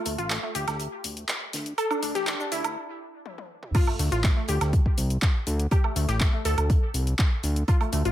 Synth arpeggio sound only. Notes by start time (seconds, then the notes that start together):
0.06 A3
0.18 F4
0.30 A3
0.43 A3
0.55 G4
1.78 A4
1.91 D4
2.03 D4
2.15 G4
2.27 D4
2.40 D4
2.52 E4
3.75 F4
3.87 A3
3.99 A3
4.12 F4
4.24 A3
4.37 A3
4.49 G4
5.71 G4
5.84 A3
5.96 A3
6.09 G4
6.21 A3
6.33 A3
6.45 A4
7.68 F4
7.81 A3
7.93 A3
8.05 F4